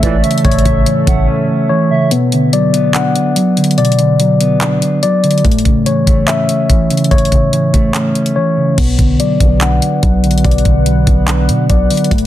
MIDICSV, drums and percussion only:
0, 0, Header, 1, 2, 480
1, 0, Start_track
1, 0, Key_signature, 2, "minor"
1, 0, Tempo, 416667
1, 514, Time_signature, 4, 2, 24, 8
1, 14129, End_track
2, 0, Start_track
2, 0, Title_t, "Drums"
2, 33, Note_on_c, 9, 42, 90
2, 34, Note_on_c, 9, 36, 92
2, 148, Note_off_c, 9, 42, 0
2, 149, Note_off_c, 9, 36, 0
2, 273, Note_on_c, 9, 42, 65
2, 353, Note_off_c, 9, 42, 0
2, 353, Note_on_c, 9, 42, 66
2, 433, Note_off_c, 9, 42, 0
2, 433, Note_on_c, 9, 42, 63
2, 514, Note_off_c, 9, 42, 0
2, 514, Note_on_c, 9, 36, 104
2, 514, Note_on_c, 9, 42, 61
2, 593, Note_off_c, 9, 42, 0
2, 593, Note_on_c, 9, 42, 62
2, 629, Note_off_c, 9, 36, 0
2, 674, Note_off_c, 9, 42, 0
2, 674, Note_on_c, 9, 42, 64
2, 753, Note_on_c, 9, 36, 90
2, 755, Note_off_c, 9, 42, 0
2, 755, Note_on_c, 9, 42, 69
2, 868, Note_off_c, 9, 36, 0
2, 870, Note_off_c, 9, 42, 0
2, 995, Note_on_c, 9, 42, 82
2, 1111, Note_off_c, 9, 42, 0
2, 1235, Note_on_c, 9, 36, 98
2, 1236, Note_on_c, 9, 42, 82
2, 1350, Note_off_c, 9, 36, 0
2, 1351, Note_off_c, 9, 42, 0
2, 2434, Note_on_c, 9, 42, 90
2, 2549, Note_off_c, 9, 42, 0
2, 2675, Note_on_c, 9, 42, 64
2, 2790, Note_off_c, 9, 42, 0
2, 2915, Note_on_c, 9, 42, 80
2, 3030, Note_off_c, 9, 42, 0
2, 3155, Note_on_c, 9, 42, 76
2, 3270, Note_off_c, 9, 42, 0
2, 3392, Note_on_c, 9, 39, 116
2, 3394, Note_on_c, 9, 42, 81
2, 3507, Note_off_c, 9, 39, 0
2, 3509, Note_off_c, 9, 42, 0
2, 3635, Note_on_c, 9, 42, 76
2, 3750, Note_off_c, 9, 42, 0
2, 3873, Note_on_c, 9, 42, 85
2, 3988, Note_off_c, 9, 42, 0
2, 4113, Note_on_c, 9, 42, 60
2, 4192, Note_off_c, 9, 42, 0
2, 4192, Note_on_c, 9, 42, 62
2, 4271, Note_off_c, 9, 42, 0
2, 4271, Note_on_c, 9, 42, 60
2, 4352, Note_off_c, 9, 42, 0
2, 4352, Note_on_c, 9, 42, 59
2, 4432, Note_off_c, 9, 42, 0
2, 4432, Note_on_c, 9, 42, 60
2, 4513, Note_off_c, 9, 42, 0
2, 4513, Note_on_c, 9, 42, 60
2, 4592, Note_off_c, 9, 42, 0
2, 4592, Note_on_c, 9, 42, 68
2, 4707, Note_off_c, 9, 42, 0
2, 4834, Note_on_c, 9, 42, 82
2, 4949, Note_off_c, 9, 42, 0
2, 5075, Note_on_c, 9, 42, 77
2, 5190, Note_off_c, 9, 42, 0
2, 5313, Note_on_c, 9, 39, 111
2, 5314, Note_on_c, 9, 42, 80
2, 5428, Note_off_c, 9, 39, 0
2, 5429, Note_off_c, 9, 42, 0
2, 5554, Note_on_c, 9, 42, 79
2, 5669, Note_off_c, 9, 42, 0
2, 5792, Note_on_c, 9, 42, 81
2, 5908, Note_off_c, 9, 42, 0
2, 6033, Note_on_c, 9, 42, 62
2, 6113, Note_off_c, 9, 42, 0
2, 6113, Note_on_c, 9, 42, 61
2, 6194, Note_off_c, 9, 42, 0
2, 6194, Note_on_c, 9, 42, 60
2, 6273, Note_off_c, 9, 42, 0
2, 6273, Note_on_c, 9, 36, 108
2, 6273, Note_on_c, 9, 42, 62
2, 6353, Note_off_c, 9, 42, 0
2, 6353, Note_on_c, 9, 42, 61
2, 6389, Note_off_c, 9, 36, 0
2, 6434, Note_off_c, 9, 42, 0
2, 6434, Note_on_c, 9, 42, 60
2, 6512, Note_on_c, 9, 36, 84
2, 6513, Note_off_c, 9, 42, 0
2, 6513, Note_on_c, 9, 42, 65
2, 6628, Note_off_c, 9, 36, 0
2, 6628, Note_off_c, 9, 42, 0
2, 6753, Note_on_c, 9, 42, 77
2, 6869, Note_off_c, 9, 42, 0
2, 6994, Note_on_c, 9, 36, 93
2, 6994, Note_on_c, 9, 42, 78
2, 7109, Note_off_c, 9, 36, 0
2, 7110, Note_off_c, 9, 42, 0
2, 7233, Note_on_c, 9, 39, 114
2, 7234, Note_on_c, 9, 42, 83
2, 7348, Note_off_c, 9, 39, 0
2, 7350, Note_off_c, 9, 42, 0
2, 7475, Note_on_c, 9, 42, 75
2, 7591, Note_off_c, 9, 42, 0
2, 7713, Note_on_c, 9, 36, 89
2, 7714, Note_on_c, 9, 42, 82
2, 7829, Note_off_c, 9, 36, 0
2, 7829, Note_off_c, 9, 42, 0
2, 7954, Note_on_c, 9, 42, 62
2, 8034, Note_off_c, 9, 42, 0
2, 8034, Note_on_c, 9, 42, 60
2, 8114, Note_off_c, 9, 42, 0
2, 8114, Note_on_c, 9, 42, 59
2, 8193, Note_on_c, 9, 36, 105
2, 8194, Note_off_c, 9, 42, 0
2, 8194, Note_on_c, 9, 42, 60
2, 8274, Note_off_c, 9, 42, 0
2, 8274, Note_on_c, 9, 42, 60
2, 8309, Note_off_c, 9, 36, 0
2, 8353, Note_off_c, 9, 42, 0
2, 8353, Note_on_c, 9, 42, 61
2, 8432, Note_on_c, 9, 36, 85
2, 8433, Note_off_c, 9, 42, 0
2, 8433, Note_on_c, 9, 42, 65
2, 8547, Note_off_c, 9, 36, 0
2, 8548, Note_off_c, 9, 42, 0
2, 8675, Note_on_c, 9, 42, 81
2, 8790, Note_off_c, 9, 42, 0
2, 8914, Note_on_c, 9, 36, 93
2, 8915, Note_on_c, 9, 42, 76
2, 9029, Note_off_c, 9, 36, 0
2, 9030, Note_off_c, 9, 42, 0
2, 9153, Note_on_c, 9, 39, 112
2, 9154, Note_on_c, 9, 42, 79
2, 9268, Note_off_c, 9, 39, 0
2, 9269, Note_off_c, 9, 42, 0
2, 9394, Note_on_c, 9, 42, 64
2, 9509, Note_off_c, 9, 42, 0
2, 9515, Note_on_c, 9, 42, 66
2, 9630, Note_off_c, 9, 42, 0
2, 10113, Note_on_c, 9, 36, 103
2, 10114, Note_on_c, 9, 42, 92
2, 10114, Note_on_c, 9, 49, 93
2, 10228, Note_off_c, 9, 36, 0
2, 10229, Note_off_c, 9, 42, 0
2, 10229, Note_off_c, 9, 49, 0
2, 10353, Note_on_c, 9, 36, 88
2, 10354, Note_on_c, 9, 42, 67
2, 10468, Note_off_c, 9, 36, 0
2, 10469, Note_off_c, 9, 42, 0
2, 10595, Note_on_c, 9, 42, 82
2, 10710, Note_off_c, 9, 42, 0
2, 10834, Note_on_c, 9, 36, 97
2, 10834, Note_on_c, 9, 42, 80
2, 10949, Note_off_c, 9, 36, 0
2, 10949, Note_off_c, 9, 42, 0
2, 11072, Note_on_c, 9, 39, 115
2, 11073, Note_on_c, 9, 42, 80
2, 11187, Note_off_c, 9, 39, 0
2, 11189, Note_off_c, 9, 42, 0
2, 11315, Note_on_c, 9, 42, 78
2, 11430, Note_off_c, 9, 42, 0
2, 11553, Note_on_c, 9, 36, 92
2, 11553, Note_on_c, 9, 42, 85
2, 11668, Note_off_c, 9, 36, 0
2, 11668, Note_off_c, 9, 42, 0
2, 11794, Note_on_c, 9, 42, 62
2, 11874, Note_off_c, 9, 42, 0
2, 11874, Note_on_c, 9, 42, 61
2, 11953, Note_off_c, 9, 42, 0
2, 11953, Note_on_c, 9, 42, 64
2, 12033, Note_off_c, 9, 42, 0
2, 12033, Note_on_c, 9, 36, 107
2, 12033, Note_on_c, 9, 42, 61
2, 12112, Note_off_c, 9, 42, 0
2, 12112, Note_on_c, 9, 42, 62
2, 12148, Note_off_c, 9, 36, 0
2, 12192, Note_off_c, 9, 42, 0
2, 12192, Note_on_c, 9, 42, 64
2, 12271, Note_off_c, 9, 42, 0
2, 12271, Note_on_c, 9, 42, 68
2, 12272, Note_on_c, 9, 36, 87
2, 12387, Note_off_c, 9, 36, 0
2, 12387, Note_off_c, 9, 42, 0
2, 12512, Note_on_c, 9, 42, 83
2, 12627, Note_off_c, 9, 42, 0
2, 12753, Note_on_c, 9, 42, 80
2, 12754, Note_on_c, 9, 36, 93
2, 12868, Note_off_c, 9, 42, 0
2, 12869, Note_off_c, 9, 36, 0
2, 12992, Note_on_c, 9, 39, 113
2, 12993, Note_on_c, 9, 42, 84
2, 13107, Note_off_c, 9, 39, 0
2, 13108, Note_off_c, 9, 42, 0
2, 13235, Note_on_c, 9, 42, 80
2, 13350, Note_off_c, 9, 42, 0
2, 13474, Note_on_c, 9, 36, 91
2, 13474, Note_on_c, 9, 42, 87
2, 13589, Note_off_c, 9, 36, 0
2, 13589, Note_off_c, 9, 42, 0
2, 13714, Note_on_c, 9, 42, 63
2, 13714, Note_on_c, 9, 46, 77
2, 13794, Note_off_c, 9, 42, 0
2, 13794, Note_on_c, 9, 42, 60
2, 13830, Note_off_c, 9, 46, 0
2, 13875, Note_off_c, 9, 42, 0
2, 13875, Note_on_c, 9, 42, 60
2, 13954, Note_on_c, 9, 36, 107
2, 13955, Note_off_c, 9, 42, 0
2, 13955, Note_on_c, 9, 42, 61
2, 14035, Note_off_c, 9, 42, 0
2, 14035, Note_on_c, 9, 42, 62
2, 14069, Note_off_c, 9, 36, 0
2, 14129, Note_off_c, 9, 42, 0
2, 14129, End_track
0, 0, End_of_file